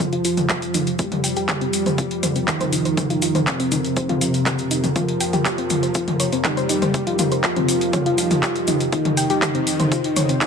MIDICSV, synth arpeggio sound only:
0, 0, Header, 1, 2, 480
1, 0, Start_track
1, 0, Tempo, 495868
1, 959, Time_signature, 4, 2, 24, 8
1, 10134, End_track
2, 0, Start_track
2, 0, Title_t, "Synth arpeggio sound"
2, 0, Program_c, 0, 84
2, 123, Note_on_c, 0, 65, 99
2, 212, Note_off_c, 0, 65, 0
2, 239, Note_on_c, 0, 65, 74
2, 334, Note_off_c, 0, 65, 0
2, 479, Note_on_c, 0, 67, 78
2, 574, Note_off_c, 0, 67, 0
2, 719, Note_on_c, 0, 63, 73
2, 837, Note_off_c, 0, 63, 0
2, 959, Note_on_c, 0, 65, 80
2, 1016, Note_off_c, 0, 65, 0
2, 1199, Note_on_c, 0, 79, 76
2, 1294, Note_off_c, 0, 79, 0
2, 1322, Note_on_c, 0, 67, 106
2, 1412, Note_off_c, 0, 67, 0
2, 1439, Note_on_c, 0, 67, 99
2, 1557, Note_off_c, 0, 67, 0
2, 1563, Note_on_c, 0, 60, 71
2, 1674, Note_off_c, 0, 60, 0
2, 1803, Note_on_c, 0, 72, 72
2, 1856, Note_off_c, 0, 72, 0
2, 1918, Note_on_c, 0, 65, 81
2, 2013, Note_off_c, 0, 65, 0
2, 2159, Note_on_c, 0, 72, 72
2, 2216, Note_off_c, 0, 72, 0
2, 2283, Note_on_c, 0, 60, 76
2, 2393, Note_off_c, 0, 60, 0
2, 2523, Note_on_c, 0, 72, 97
2, 2612, Note_off_c, 0, 72, 0
2, 2639, Note_on_c, 0, 63, 69
2, 2757, Note_off_c, 0, 63, 0
2, 2762, Note_on_c, 0, 72, 76
2, 2873, Note_off_c, 0, 72, 0
2, 3002, Note_on_c, 0, 65, 95
2, 3092, Note_off_c, 0, 65, 0
2, 3119, Note_on_c, 0, 65, 76
2, 3214, Note_off_c, 0, 65, 0
2, 3242, Note_on_c, 0, 72, 80
2, 3332, Note_off_c, 0, 72, 0
2, 3482, Note_on_c, 0, 60, 97
2, 3572, Note_off_c, 0, 60, 0
2, 3598, Note_on_c, 0, 63, 78
2, 3716, Note_off_c, 0, 63, 0
2, 3838, Note_on_c, 0, 72, 80
2, 3933, Note_off_c, 0, 72, 0
2, 3962, Note_on_c, 0, 65, 102
2, 4052, Note_off_c, 0, 65, 0
2, 4078, Note_on_c, 0, 65, 74
2, 4173, Note_off_c, 0, 65, 0
2, 4319, Note_on_c, 0, 67, 85
2, 4413, Note_off_c, 0, 67, 0
2, 4559, Note_on_c, 0, 63, 73
2, 4677, Note_off_c, 0, 63, 0
2, 4799, Note_on_c, 0, 65, 82
2, 4856, Note_off_c, 0, 65, 0
2, 5039, Note_on_c, 0, 79, 76
2, 5133, Note_off_c, 0, 79, 0
2, 5163, Note_on_c, 0, 67, 105
2, 5252, Note_off_c, 0, 67, 0
2, 5280, Note_on_c, 0, 67, 96
2, 5397, Note_off_c, 0, 67, 0
2, 5403, Note_on_c, 0, 60, 72
2, 5514, Note_off_c, 0, 60, 0
2, 5643, Note_on_c, 0, 72, 72
2, 5696, Note_off_c, 0, 72, 0
2, 5759, Note_on_c, 0, 65, 83
2, 5854, Note_off_c, 0, 65, 0
2, 6000, Note_on_c, 0, 73, 78
2, 6056, Note_off_c, 0, 73, 0
2, 6123, Note_on_c, 0, 60, 75
2, 6234, Note_off_c, 0, 60, 0
2, 6240, Note_on_c, 0, 63, 84
2, 6357, Note_off_c, 0, 63, 0
2, 6362, Note_on_c, 0, 72, 106
2, 6452, Note_off_c, 0, 72, 0
2, 6479, Note_on_c, 0, 63, 71
2, 6597, Note_off_c, 0, 63, 0
2, 6603, Note_on_c, 0, 72, 74
2, 6714, Note_off_c, 0, 72, 0
2, 6843, Note_on_c, 0, 65, 104
2, 6932, Note_off_c, 0, 65, 0
2, 6960, Note_on_c, 0, 65, 76
2, 7054, Note_off_c, 0, 65, 0
2, 7084, Note_on_c, 0, 72, 78
2, 7172, Note_off_c, 0, 72, 0
2, 7323, Note_on_c, 0, 60, 99
2, 7412, Note_off_c, 0, 60, 0
2, 7680, Note_on_c, 0, 73, 82
2, 7774, Note_off_c, 0, 73, 0
2, 7804, Note_on_c, 0, 65, 102
2, 7892, Note_off_c, 0, 65, 0
2, 7919, Note_on_c, 0, 65, 76
2, 8014, Note_off_c, 0, 65, 0
2, 8159, Note_on_c, 0, 67, 81
2, 8254, Note_off_c, 0, 67, 0
2, 8400, Note_on_c, 0, 63, 75
2, 8517, Note_off_c, 0, 63, 0
2, 8639, Note_on_c, 0, 65, 82
2, 8696, Note_off_c, 0, 65, 0
2, 8879, Note_on_c, 0, 79, 73
2, 8974, Note_off_c, 0, 79, 0
2, 9003, Note_on_c, 0, 67, 107
2, 9092, Note_off_c, 0, 67, 0
2, 9243, Note_on_c, 0, 60, 76
2, 9354, Note_off_c, 0, 60, 0
2, 9483, Note_on_c, 0, 72, 75
2, 9536, Note_off_c, 0, 72, 0
2, 9599, Note_on_c, 0, 65, 84
2, 9694, Note_off_c, 0, 65, 0
2, 9839, Note_on_c, 0, 73, 72
2, 9896, Note_off_c, 0, 73, 0
2, 9963, Note_on_c, 0, 60, 77
2, 10074, Note_off_c, 0, 60, 0
2, 10080, Note_on_c, 0, 63, 85
2, 10134, Note_off_c, 0, 63, 0
2, 10134, End_track
0, 0, End_of_file